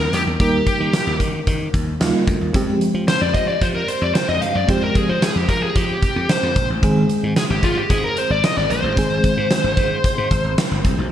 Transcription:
Already playing: fm electric piano G3 A#3 D#4 A#4, lead electric guitar A#4
0.13 slap bass F2, lead electric guitar G4, closed hi-hat
0.26 slap bass E2
0.39 slap bass D#2, fm electric piano G3 A#3 D#4 A#4, lead electric guitar G4, kick, closed hi-hat
0.67 kick, closed hi-hat
0.80 slap bass D#3
0.93 snare, closed hi-hat
1.07 slap bass D#2
1.20 slap bass D#3, kick, closed hi-hat
1.47 slap bass D#3, kick, closed hi-hat
1.74 slap bass D#2, kick, closed hi-hat
2.00 slap bass D#2, fm electric piano G3 A#3 D#4 F4, snare, closed hi-hat
2.28 slap bass D2, kick, closed hi-hat
2.41 slap bass D#2
2.53 slap bass F2, fm electric piano F3 G#3 C4 G4, kick, closed hi-hat
2.81 closed hi-hat
2.94 slap bass F3
3.08 lead electric guitar C5, snare, closed hi-hat
3.21 slap bass F2, lead electric guitar D5
3.34 slap bass F3, lead electric guitar D#5, kick, closed hi-hat
3.48 lead electric guitar D5
3.61 slap bass F3, lead electric guitar C5, kick, closed hi-hat
3.75 lead electric guitar A#4
3.88 lead electric guitar C5, closed hi-hat
4.01 slap bass F2, lead electric guitar D5
4.15 lead electric guitar C5, snare, closed hi-hat
4.28 slap bass F2, lead electric guitar D#5
4.42 slap bass G2, lead electric guitar F5, closed hi-hat
4.55 slap bass F#2, lead electric guitar D5
4.68 slap bass F2, fm electric piano F3 G#3 C4 G4, lead electric guitar C5, kick, closed hi-hat
4.83 lead electric guitar A#4
4.95 lead electric guitar G#4, kick, closed hi-hat
5.09 slap bass F3, lead electric guitar C5
5.22 lead electric guitar G#4, snare, closed hi-hat
5.36 slap bass F2, lead electric guitar G4
5.49 slap bass F3, lead electric guitar A#4, kick, closed hi-hat
5.63 lead electric guitar G#4
5.76 slap bass F3, lead electric guitar G4, kick, closed hi-hat
6.02 kick, closed hi-hat
6.16 slap bass F2
6.29 lead electric guitar C5, snare, closed hi-hat
6.43 slap bass F2
6.56 slap bass A#1, kick, closed hi-hat
6.70 slap bass A1
6.82 slap bass G#1, fm electric piano D#3 G#3 C4 G#4, kick, closed hi-hat
7.09 closed hi-hat
7.23 slap bass G#2
7.36 lead electric guitar G#4, snare, closed hi-hat
7.50 slap bass G#1, lead electric guitar G4
7.63 slap bass G#2, lead electric guitar F4, kick, closed hi-hat
7.77 lead electric guitar G4
7.90 slap bass G#2, lead electric guitar G#4, kick, closed hi-hat
8.04 lead electric guitar A#4
8.17 lead electric guitar C5, closed hi-hat
8.30 slap bass G#1, lead electric guitar D5
8.44 lead electric guitar D#5, snare, closed hi-hat
8.57 slap bass G#1, lead electric guitar D5
8.70 slap bass A#1, lead electric guitar C5, closed hi-hat
8.83 slap bass A1
8.96 slap bass G#1, fm electric piano D#3 G#3 C4 G#4, kick, closed hi-hat
9.24 kick, closed hi-hat
9.37 slap bass G#2
9.51 snare, closed hi-hat
9.64 slap bass G#1
9.77 slap bass G#2, kick, closed hi-hat
10.04 kick, closed hi-hat
10.18 slap bass G#2
10.31 slap bass G#1, kick, closed hi-hat
10.44 slap bass G#1
10.58 snare, closed hi-hat
10.71 slap bass G1
10.85 slap bass C2, kick, closed hi-hat
10.98 slap bass B1

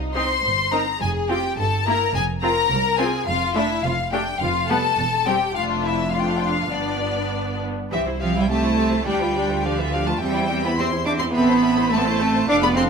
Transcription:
Already playing: cello section C2, double bass section C2, violin section D#4
0.15 viola section C4 D#4, violin section C5 C6
0.43 double bass section G1, cello section G2
0.72 viola section C4 D#4, violin section A#4 A#5
1.00 double bass section F1, cello section F2, violin section G#4 G#5
1.28 viola section C4 F4, violin section G4 G5
1.57 double bass section G1, cello section G2, violin section A4 A5
1.85 viola section A#3 E4, violin section A#4 A#5
2.14 double bass section F1, cello section F2, violin section G#4 G#5
2.42 viola section C4 F4, violin section A#4 A#5
2.71 double bass section C2, cello section C2
2.98 viola section C4 F4, violin section G#4 G#5
3.27 double bass section F1, cello section F2, violin section F4 F5
3.55 viola section A3 D4, violin section E4 E5
3.83 double bass section F1, cello section F2, violin section F4 F5
4.12 viola section A3 D4, violin section G4 G5
4.40 double bass section F1, cello section F2, violin section F4 F5
4.69 viola section G3 B3, violin section A4 A5
4.97 double bass section E1, cello section E2
5.26 viola section G3 C4, violin section G4 G5
5.54 double bass section F1, cello section F2, viola section A3 D4, violin section F4 F5
5.84 violin section E4 E5
6.11 viola section A3 D4, violin section F4 F5
6.20 violin section G5
6.29 violin section F5
6.38 violin section G5
6.46 violin section F5
6.71 double bass section G1, cello section G2, viola section B3 D4, violin section D4 D5
7.91 double bass section C2, cello section E3, viola section C4 G4, violin section E5
8.05 viola section E4, violin section C5
8.20 cello section F3, viola section C4 G4, violin section E5 F5
8.34 cello section G3, viola section E4, violin section C5 G5
8.49 cello section A3, viola section C4 G4, violin section E5 A5
8.63 viola section E4, violin section C5
8.78 viola section C4 G4, violin section E5
8.92 viola section E4, violin section C5
9.06 double bass section D2, cello section G3, viola section D4 G4, violin section D5 G5
9.20 viola section F4, violin section B4
9.35 viola section D4 G4, violin section D5
9.49 viola section F4, violin section B4
9.64 cello section F3, viola section D4 G4, violin section D5 F5
9.78 cello section E3, viola section F4, violin section B4 E5
9.92 cello section F3, viola section D4 G4, violin section D5 F5
10.07 cello section A3, viola section F4, violin section B4 A5
10.21 double bass section E2, cello section G3, viola section C4 G4, violin section E5 G5
10.35 viola section E4, violin section C5
10.49 viola section C4 G4, violin section E5
10.64 cello section B3, viola section E4, violin section C5 B5
10.77 cello section C4, viola section C4 G4, violin section E5 C6
10.91 viola section E4, violin section C5
11.05 viola section C4 G4, cello section D4, violin section E5 D6
11.19 cello section C4, viola section E4, violin section C5 C6
11.33 double bass section A1, cello section B3, viola section C4 A4, violin section E5 B5
11.47 viola section E4 C5, violin section C5
11.63 viola section C4 A4, violin section E5
11.77 viola section E4 C5, violin section C5
11.90 cello section A3, viola section C4 A4, violin section E5 A5
11.98 cello section B3
12.05 cello section A3, viola section E4 C5, violin section C5
12.18 viola section C4 A4, violin section E5
12.33 viola section E4 C5, violin section C5
12.47 double bass section F1, viola section D4 A4, cello section D4, violin section F5 D6
12.62 cello section B3, viola section F4, violin section D5 B5
12.76 cello section C4, viola section D4 A4, violin section F5 C6

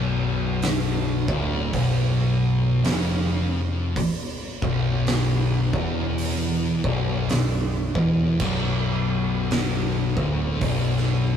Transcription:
Already playing: picked electric bass B0, distorted electric guitar B1
0.62 snare, open hi-hat
1.28 picked electric bass D1, distorted electric guitar D2, kick
1.73 picked electric bass B0, distorted electric guitar B1, kick, open hi-hat
2.84 picked electric bass F1, distorted electric guitar F2, snare, open hi-hat
3.96 muted picked electric bass stroke, muted distorted electric guitar stroke, kick, open hi-hat
4.62 picked electric bass B0, distorted electric guitar B1, kick
5.07 snare, open hi-hat
5.73 picked electric bass E1, distorted electric guitar E2, kick
6.18 open hi-hat
6.84 picked electric bass B0, distorted electric guitar B1, kick
7.28 picked electric bass B0, distorted electric guitar B1, snare, open hi-hat
7.95 picked electric bass E1, distorted electric guitar E2, kick
8.40 picked electric bass B0, distorted electric guitar B1, kick, crash
9.51 snare, open hi-hat
10.16 picked electric bass D1, distorted electric guitar D2, kick
10.61 picked electric bass B0, distorted electric guitar B1, kick, open hi-hat
10.97 snare

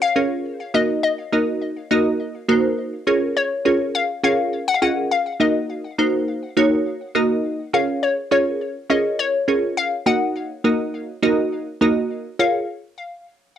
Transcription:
0.02 synth pluck F5
0.16 synth stab C#4 F4 G#4 A#4 C#5
0.74 synth stab A#3 D#4 F#4 A#4 D#5, synth pluck D#5
1.03 synth pluck D#5
1.32 synth stab A#3 D#4 F#4 A#4 D#5
1.91 synth stab A#3 D#4 F#4 A#4 D#5
2.49 synth stab A#3 D#4 F#4 A#4 C5
3.07 synth stab C#4 F4 G#4 A#4 C#5
3.37 synth pluck C#5
3.65 synth stab C#4 F4 G#4 A#4 C#5
3.95 synth pluck F5
4.24 synth stab C#4 F4 G#4 A#4 C#5, synth pluck F5
4.68 synth pluck F#5
4.74 synth pluck F5
4.82 synth stab C#4 F4 G#4 A#4 D#5, synth pluck F#5
5.11 synth pluck F5
5.40 synth stab A#3 D#4 F#4 A#4 D#5, synth pluck D#5
5.98 synth stab A#3 D#4 F#4 A#4 C5
6.57 synth stab A#3 D#4 F#4 A#4 C#5
7.15 synth stab A#3 D#4 F#4 A#4 D#5
7.73 synth stab C#4 F4 G#4 A#4 C#5, synth pluck F5
8.03 synth pluck C#5
8.31 synth stab C#4 F4 G#4 A#4 C#5, synth pluck C#5
8.90 synth stab C#4 F4 G#4 A#4 C#5, synth pluck D#5
9.19 synth pluck C#5
9.48 synth stab C#4 F4 G#4 A#4 C#5
9.77 synth pluck F5
10.06 synth stab A#3 D#4 F#4 A#4 D#5, synth pluck F#5
10.64 synth stab A#3 D#4 F#4 A#4 D#5
11.23 synth stab A#3 D#4 F#4 A#4 D#5
11.81 synth stab A#3 D#4 F#4 A#4 D#5
12.39 synth stab F4 G#4 A#4 C#5, synth pluck F5

